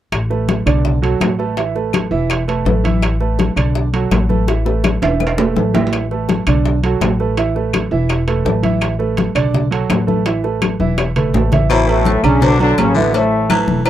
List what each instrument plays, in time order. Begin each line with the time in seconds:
0.12 upright bass A1, high bongo, high conga, high timbale, claves
0.30 upright piano A3 A4 B4, high bongo, high conga
0.49 high bongo, high conga, high timbale
0.66 upright bass B1, upright piano D3 D4 D5, high bongo, high conga, low conga, high timbale, claves
0.85 high bongo, high conga, low conga
1.02 upright piano F#3 F#4 A4, high timbale
1.20 upright bass A1, high bongo, low bongo, high conga, high timbale, low timbale, claves
1.39 upright piano A3 A4 B4, high bongo
1.57 upright piano E3 E4 E5, high bongo, high conga, high timbale
1.75 upright piano A3 A4 B4, high bongo, high conga
1.93 high bongo, high conga, high timbale, claves
2.11 upright bass E1, upright piano E3 E4 E5, high conga
2.30 high bongo, high conga, high timbale, claves
2.48 upright piano A3 A4 B4, high bongo, high conga, high timbale
2.65 upright bass A1, upright piano A3 A4 B4, high bongo, low bongo, high conga
2.84 upright piano E3 E4 E5, high bongo, high conga, high timbale
3.02 high bongo, high timbale, claves
3.20 upright piano A3 A4 B4, high bongo, high conga
3.39 high bongo, high conga, high timbale
3.56 upright bass B1, upright piano D3 D4 D5, high bongo, high conga, low conga, high timbale, claves
3.75 high bongo
3.93 upright piano F#3 F#4 A4, high conga, high timbale
4.11 upright bass A1, high bongo, low bongo, high conga, high timbale, low timbale, claves
4.29 upright piano A3 A4 B4, high bongo, high conga
4.47 upright piano E3 E4 E5, high bongo, high conga, high timbale
4.65 upright piano A3 A4 B4, high bongo, high conga
4.84 high bongo, high conga, high timbale, claves
5.02 upright bass E1, upright piano E3 E4 E5, low bongo, high conga, high timbale
5.20 low bongo, high conga, claves
5.27 high timbale
5.38 upright piano A3 A4 B4, low bongo, high conga, low timbale
5.56 upright bass A1, upright piano A3 A4 B4, low bongo, high conga
5.74 upright piano E3 E4 E5, low bongo, high conga, low timbale
5.87 low timbale
5.93 high bongo, high conga, high timbale, claves
6.11 upright piano A3 A4 B4, high bongo, high conga
6.29 high bongo, high conga, high timbale
6.47 upright bass B1, upright piano D3 D4 D5, high bongo, high conga, low conga, high timbale, claves
6.66 high bongo, high conga
6.83 upright piano F#3 F#4 A4, high conga, high timbale
7.01 upright bass A1, high bongo, low bongo, high conga, high timbale, low timbale, claves
7.20 upright piano A3 A4 B4, high bongo
7.37 upright piano E3 E4 E5, high bongo, high conga, high timbale
7.55 upright piano A3 A4 B4, high bongo, high conga
7.73 high bongo, high conga, high timbale, claves
7.91 upright bass E1, upright piano E3 E4 E5, high conga
8.09 high bongo, high conga, high timbale, claves
8.27 upright piano A3 A4 B4, high bongo, high conga, high timbale
8.45 upright bass A1, upright piano A3 A4 B4, high bongo, low bongo, high conga
8.63 upright piano E3 E4 E5, high bongo, high conga, high timbale
8.81 high bongo, high timbale, claves
8.99 upright piano A3 A4 B4, high bongo, high conga
9.17 high bongo, high conga, high timbale
9.35 upright bass B1, upright piano D3 D4 D5, high bongo, high conga, low conga, high timbale, claves
9.54 high bongo, high conga, low conga
9.71 upright piano F#3 F#4 A4, high conga, high timbale
9.90 upright bass A1, high bongo, low bongo, high conga, high timbale, low timbale, claves
10.07 upright piano A3 A4 B4, high bongo, high conga
10.26 upright piano E3 E4 E5, high bongo, high conga, high timbale
10.43 upright piano A3 A4 B4, high bongo, high conga
10.62 high bongo, high conga, high timbale, claves
10.80 upright bass E1, upright piano E3 E4 E5, high conga
10.98 high bongo, high timbale, claves
11.16 upright piano A3 A4 B4, low conga, high timbale
11.34 upright bass A1, upright piano A3 A4 B4, low bongo, low timbale
11.52 upright piano E3 E4 E5, low bongo, low conga, high timbale
11.70 baritone saxophone B2, trombone section E3 E4, cowbell, high conga, low agogo, claves
11.88 trombone section A2 A3, upright piano A3 A4 B4, high conga, low agogo
12.05 cowbell, high conga, low timbale
12.24 upright bass B1, trombone section C#3 C#4, upright piano D3 D4 D5, high conga, low conga, low agogo, claves
12.41 baritone saxophone B2, trombone section D3 D4, cowbell, high conga, low conga, low agogo
12.60 trombone section D3 D4, upright piano F#3 F#4 A4, low agogo
12.78 upright bass A1, trombone section C#3 C#4, cowbell, high conga, low timbale, low agogo, claves
12.95 trombone section B2 B3, baritone saxophone D3, upright piano E3 E4 E5, high conga
13.14 trombone section A2 A3, upright piano E3 E4 E5, cowbell, high conga, low agogo
13.32 high conga
13.50 baritone saxophone E3, upright piano A3 A4 B4, cowbell, high conga, low timbale, low agogo, claves
13.68 upright bass E1, high conga
13.86 upright piano E3 E4 E5, cowbell, low agogo, claves